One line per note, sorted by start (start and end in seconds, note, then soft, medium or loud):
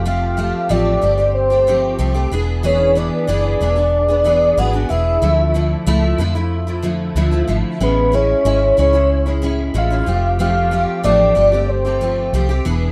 0.00 0.51 F1 medium
0.05 0.36 F3 medium
0.05 0.36 A3 medium
0.05 0.37 C4 medium
0.05 0.37 G4 medium
0.05 0.72 F5 loud
0.37 0.68 F3 medium
0.37 0.69 A3 medium
0.37 0.69 C4 medium
0.37 0.70 G4 medium
0.69 0.96 A1 medium
0.69 1.00 F3 medium
0.69 1.01 A3 medium
0.69 1.02 C4 medium
0.69 1.02 G4 medium
0.69 1.34 D5 loud
1.02 1.96 G1 medium
1.02 1.18 F3 medium
1.02 1.19 A3 medium
1.02 1.18 C4 medium
1.02 1.16 G4 medium
1.18 1.51 A3 soft
1.18 1.50 C4 soft
1.18 1.49 G4 soft
1.34 2.28 C5 medium
1.50 1.67 A3 soft
1.50 1.67 C4 soft
1.50 1.67 G4 soft
1.67 1.97 F3 medium
1.67 1.98 A3 medium
1.67 1.98 C4 medium
1.67 1.99 G4 medium
1.99 2.25 C2 medium
1.99 2.15 F3 medium
1.99 2.15 A3 medium
1.99 2.14 C4 medium
1.99 2.13 G4 medium
2.14 2.32 A3 soft
2.14 2.32 C4 medium
2.14 2.31 G4 medium
2.32 3.09 E1 medium
2.32 2.62 E3 medium
2.32 2.63 B3 medium
2.32 2.63 D4 medium
2.32 2.64 G#4 medium
2.63 2.94 E3 medium
2.63 2.95 B3 medium
2.63 2.96 D4 medium
2.63 2.96 G#4 medium
2.63 2.98 C#5 medium
2.95 3.26 E3 medium
2.95 3.27 B3 medium
2.95 3.28 D4 medium
2.95 3.28 G#4 medium
2.95 3.61 D5 medium
3.27 3.54 F#1 medium
3.27 3.59 E3 medium
3.27 3.60 B3 medium
3.27 3.61 D4 medium
3.27 3.61 G#4 medium
3.61 4.54 E1 medium
3.61 3.77 E3 medium
3.61 3.77 B3 medium
3.61 3.76 D4 medium
3.61 3.75 G#4 medium
3.61 4.60 D5 medium
3.76 4.09 B3 soft
3.76 4.09 D4 soft
3.76 4.07 G#4 soft
4.08 4.24 B3 soft
4.08 4.25 D4 soft
4.08 4.25 G#4 medium
4.24 4.56 E3 medium
4.24 4.57 B3 medium
4.24 4.57 D4 medium
4.24 4.58 G#4 medium
4.57 4.84 G#1 medium
4.57 4.74 E3 medium
4.57 4.74 B3 medium
4.57 4.73 D4 medium
4.57 4.72 G#4 medium
4.57 4.89 F#5 loud
4.73 4.89 B3 soft
4.73 4.89 D4 soft
4.73 4.90 G#4 medium
4.89 5.16 E1 medium
4.89 5.22 E3 medium
4.89 5.22 B3 medium
4.89 5.23 D4 medium
4.89 5.23 G#4 medium
4.89 6.15 E5 loud
5.22 5.74 D2 medium
5.22 5.53 D3 medium
5.22 5.54 F3 medium
5.22 5.54 A3 medium
5.22 5.55 E4 medium
5.54 5.87 D3 medium
5.54 5.85 F3 medium
5.54 5.86 A3 medium
5.54 5.86 E4 medium
5.86 6.13 C#2 medium
5.86 6.18 F3 medium
5.86 6.19 A3 loud
5.86 6.20 E4 medium
6.18 7.12 F2 medium
6.18 6.35 D3 medium
6.18 6.36 F3 medium
6.18 6.34 A3 medium
6.18 6.34 E4 medium
6.35 6.68 F3 soft
6.35 6.67 A3 soft
6.35 6.66 E4 soft
6.67 6.82 F3 soft
6.67 6.83 A3 medium
6.67 6.83 E4 medium
6.82 7.15 D3 medium
6.82 7.15 F3 medium
6.82 7.16 A3 medium
6.82 7.16 E4 medium
7.15 7.42 D2 medium
7.15 7.32 D3 medium
7.15 7.33 F3 medium
7.15 7.31 A3 medium
7.15 7.30 E4 medium
7.31 7.47 F3 soft
7.31 7.48 A3 soft
7.31 7.48 E4 medium
7.48 7.62 G#1 medium
7.48 7.80 D3 medium
7.48 7.80 F3 medium
7.48 7.81 A3 medium
7.48 7.80 E4 medium
7.80 8.33 A1 medium
7.80 8.11 A2 medium
7.80 8.12 G#3 medium
7.80 8.12 C#4 medium
7.80 8.13 E4 medium
7.80 8.16 B4 loud
8.12 8.45 A2 medium
8.12 8.44 G#3 medium
8.12 8.45 C#4 medium
8.12 8.45 E4 medium
8.12 8.78 C#5 loud
8.45 8.71 G#1 medium
8.45 8.77 G#3 medium
8.45 8.77 C#4 medium
8.45 8.78 E4 medium
8.77 9.71 C#2 medium
8.77 8.94 A2 medium
8.77 8.94 G#3 medium
8.77 8.93 C#4 medium
8.77 8.92 E4 medium
8.77 9.39 C#5 loud
8.93 9.27 G#3 soft
8.93 9.26 C#4 soft
8.93 9.25 E4 soft
9.26 9.41 G#3 soft
9.26 9.42 C#4 soft
9.26 9.42 E4 soft
9.42 9.73 A2 medium
9.42 9.73 G#3 medium
9.42 9.74 C#4 medium
9.42 9.74 E4 medium
9.74 10.01 A1 medium
9.74 9.91 A2 medium
9.74 9.91 G#3 medium
9.74 9.90 C#4 medium
9.74 9.89 E4 medium
9.74 10.37 F5 loud
9.90 10.06 G#3 soft
9.90 10.07 C#4 soft
9.90 10.07 E4 medium
10.06 10.85 F1 medium
10.06 10.38 F3 medium
10.06 10.39 A3 medium
10.06 10.39 C4 medium
10.06 10.39 G4 medium
10.39 10.70 F3 medium
10.39 10.71 A3 medium
10.39 10.72 C4 medium
10.39 10.72 G4 medium
10.39 11.01 F5 loud
10.71 11.02 F3 medium
10.71 11.03 A3 medium
10.71 11.03 C4 medium
10.71 11.04 G4 medium
11.03 11.30 A1 medium
11.03 11.34 F3 medium
11.03 11.35 A3 medium
11.03 11.35 C4 medium
11.03 11.36 G4 medium
11.03 11.70 D5 medium
11.35 12.29 G1 medium
11.35 11.52 F3 medium
11.35 11.52 A3 soft
11.35 11.52 C4 medium
11.35 11.51 G4 medium
11.52 11.86 A3 soft
11.52 11.85 C4 soft
11.52 11.84 G4 soft
11.69 12.66 C5 medium
11.85 12.00 A3 soft
11.85 12.01 C4 soft
11.85 12.01 G4 soft
12.01 12.32 F3 medium
12.01 12.33 A3 medium
12.01 12.33 C4 medium
12.01 12.34 G4 medium
12.33 12.59 C2 medium
12.33 12.50 F3 medium
12.33 12.50 A3 medium
12.33 12.49 C4 medium
12.33 12.48 G4 medium
12.49 12.65 A3 medium
12.49 12.66 C4 medium
12.49 12.65 G4 medium
12.65 12.92 E1 medium
12.65 12.92 E3 medium
12.65 12.92 B3 medium
12.65 12.92 D4 medium
12.65 12.92 G#4 medium